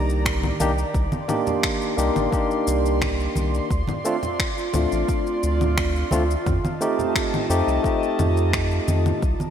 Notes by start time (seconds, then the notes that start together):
Already playing: C2 D#3 A#3 D4 D#4 G4 D5 A#5
0.09 shaker
0.26 finger snap, kick, shaker
0.43 low conga, shaker
0.60 C2 A#3 D4 D#4 G4, high conga, shaker
0.78 shaker
0.94 C2 C6, kick, shaker
1.12 high conga, shaker
1.28 A#3 D4 D#4 G4, low conga, shaker
1.47 low conga, shaker
1.63 finger snap, kick, shaker
1.82 shaker
1.97 C2 A#3 D4 D#4 G4, shaker
2.16 G1, low conga, shaker
2.31 A#3 D4 D#4 G4, kick, shaker
2.51 shaker
2.67 C2, shaker
2.86 shaker
3.01 finger snap, kick, low conga, shaker
3.20 shaker
3.36 C2, high conga, shaker
3.54 shaker
3.70 D2 F4 D5, kick, shaker
3.87 high conga, low conga, shaker
4.05 A3 C4 D4 F4, shaker
4.23 low conga, shaker
4.40 finger snap, kick, shaker
4.58 shaker
4.73 D2 A3 C4 D4 F4, low conga, shaker
4.92 A1, shaker
5.09 kick, shaker
5.27 shaker
5.43 D2, shaker
5.61 low conga, shaker
5.78 finger snap, kick, shaker
5.96 shaker
6.11 D2 A3 C4 D4 F4, high conga, shaker
6.31 shaker
6.46 F2 D#5 A5, kick, low conga, shaker
6.65 high conga, shaker
6.81 A3 C4 D#4 G4, shaker
6.99 low conga, shaker
7.15 finger snap, kick, shaker
7.34 low conga, shaker
7.49 F2 A3 C4 D#4 G4, shaker
7.67 C2, shaker
7.83 A3 C4 D#4 G4, kick, shaker
8.03 shaker
8.19 F2, low conga, shaker
8.37 shaker
8.53 finger snap, kick, shaker
8.71 shaker
8.88 F2, high conga, shaker
9.06 low conga, shaker
9.22 C2 D#3 D5 A#5, kick, shaker
9.40 high conga, shaker